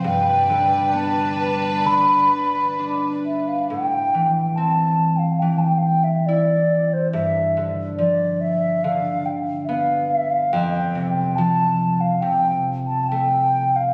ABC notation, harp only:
X:1
M:4/4
L:1/8
Q:1/4=70
K:Am
V:1 name="Harp" clef=bass
G,, D, B,2 D,2 D2 | A,, E, C2 E,2 E2 | G,, D, F,2 D,2 B,2 | F,, C, F,2 C,2 A,2 |]